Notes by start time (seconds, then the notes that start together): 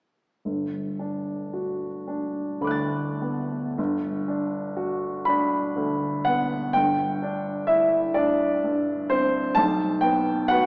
0.45 G1
0.99 D4
1.53 F#4
2.08 D4
2.61 D2 B5 D6
2.67 F#6 A6
3.22 B3
3.78 G1
4.28 D4
4.77 F#4
5.25 D4 B5
5.76 D2
6.25 B3 F#5
6.73 G1 G5
7.22 D4
7.67 E4 E5
8.14 D4 D5
8.64 G2
9.10 C4 C5
9.55 B1 A5
10.01 B3 G5
10.48 F#4 B4 F#5